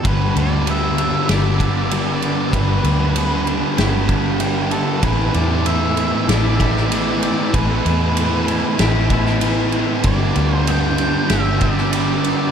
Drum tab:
RD |x-x-x-x-x-x-x-x-|x-x-x-x-x-x-x-x-|x-x-x-x-x-x-x-x-|x-x-x-x-x-x-x-x-|
SD |--------o-------|--------o-------|--------o--o----|--------o--o----|
BD |o---------o-----|o---------o-----|o---------o-----|o---------o-----|

RD |x-x-x-x-x-x-x-x-|
SD |--------o--o----|
BD |o---------o-----|